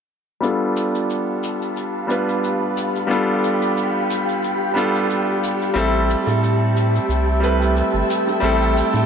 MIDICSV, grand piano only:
0, 0, Header, 1, 2, 480
1, 0, Start_track
1, 0, Tempo, 666667
1, 305, Time_signature, 4, 2, 24, 8
1, 6522, End_track
2, 0, Start_track
2, 0, Title_t, "Grand piano"
2, 0, Program_c, 0, 0
2, 292, Note_on_c, 0, 55, 81
2, 299, Note_on_c, 0, 59, 77
2, 307, Note_on_c, 0, 62, 75
2, 313, Note_on_c, 0, 65, 80
2, 320, Note_on_c, 0, 69, 91
2, 450, Control_c, 0, 64, 127
2, 1473, Note_off_c, 0, 55, 0
2, 1476, Note_off_c, 0, 59, 0
2, 1480, Note_off_c, 0, 62, 0
2, 1483, Note_off_c, 0, 65, 0
2, 1487, Note_off_c, 0, 69, 0
2, 1490, Note_on_c, 0, 55, 63
2, 1498, Note_on_c, 0, 59, 53
2, 1504, Note_on_c, 0, 62, 56
2, 1511, Note_on_c, 0, 65, 54
2, 1519, Note_on_c, 0, 71, 63
2, 2192, Note_off_c, 0, 55, 0
2, 2196, Note_off_c, 0, 59, 0
2, 2199, Note_off_c, 0, 62, 0
2, 2202, Note_off_c, 0, 65, 0
2, 2206, Note_off_c, 0, 71, 0
2, 2209, Note_on_c, 0, 55, 80
2, 2218, Note_on_c, 0, 59, 77
2, 2225, Note_on_c, 0, 62, 75
2, 2231, Note_on_c, 0, 65, 73
2, 2240, Note_on_c, 0, 69, 83
2, 3391, Note_off_c, 0, 55, 0
2, 3396, Note_off_c, 0, 59, 0
2, 3399, Note_off_c, 0, 62, 0
2, 3402, Note_off_c, 0, 65, 0
2, 3407, Note_off_c, 0, 69, 0
2, 3411, Note_on_c, 0, 55, 68
2, 3419, Note_on_c, 0, 59, 61
2, 3426, Note_on_c, 0, 62, 63
2, 3434, Note_on_c, 0, 65, 64
2, 3440, Note_on_c, 0, 69, 77
2, 4112, Note_off_c, 0, 55, 0
2, 4116, Note_off_c, 0, 59, 0
2, 4120, Note_off_c, 0, 62, 0
2, 4124, Note_off_c, 0, 65, 0
2, 4127, Note_off_c, 0, 69, 0
2, 4130, Note_on_c, 0, 55, 92
2, 4138, Note_on_c, 0, 57, 85
2, 4144, Note_on_c, 0, 60, 85
2, 4151, Note_on_c, 0, 64, 80
2, 4155, Control_c, 0, 64, 0
2, 4160, Note_on_c, 0, 69, 96
2, 4290, Control_c, 0, 64, 127
2, 5312, Note_off_c, 0, 55, 0
2, 5316, Note_off_c, 0, 57, 0
2, 5319, Note_off_c, 0, 60, 0
2, 5322, Note_off_c, 0, 64, 0
2, 5327, Note_off_c, 0, 69, 0
2, 5329, Note_on_c, 0, 55, 66
2, 5335, Note_on_c, 0, 57, 58
2, 5343, Note_on_c, 0, 60, 54
2, 5351, Note_on_c, 0, 64, 57
2, 5357, Note_on_c, 0, 71, 66
2, 6031, Note_off_c, 0, 55, 0
2, 6034, Note_off_c, 0, 57, 0
2, 6038, Note_off_c, 0, 60, 0
2, 6042, Note_off_c, 0, 64, 0
2, 6045, Note_off_c, 0, 71, 0
2, 6050, Note_on_c, 0, 55, 82
2, 6058, Note_on_c, 0, 57, 81
2, 6065, Note_on_c, 0, 60, 81
2, 6071, Note_on_c, 0, 64, 77
2, 6078, Note_on_c, 0, 69, 93
2, 6522, Note_off_c, 0, 55, 0
2, 6522, Note_off_c, 0, 57, 0
2, 6522, Note_off_c, 0, 60, 0
2, 6522, Note_off_c, 0, 64, 0
2, 6522, Note_off_c, 0, 69, 0
2, 6522, End_track
0, 0, End_of_file